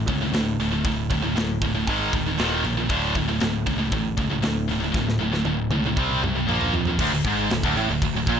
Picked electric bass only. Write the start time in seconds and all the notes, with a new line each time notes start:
0.07 C#2
0.32 D2
0.57 D1
0.84 D1
1.10 D1
1.36 D1
1.61 D1
1.87 G#1
2.13 D1
2.39 D#1
2.64 A#1
2.89 D1
3.15 D1
3.41 D1
3.67 C#2
3.92 A1
4.18 C#2
4.43 D2
4.69 D1
4.94 D1
5.21 D1
5.45 D1
5.70 C#2
5.97 C2
6.23 C2
6.47 A#1
6.73 F2
6.99 D1
7.13 D1
7.24 G#1
7.51 D1
7.63 D1
7.76 A1
7.88 D1
8.02 D1
8.13 D1
8.27 A#1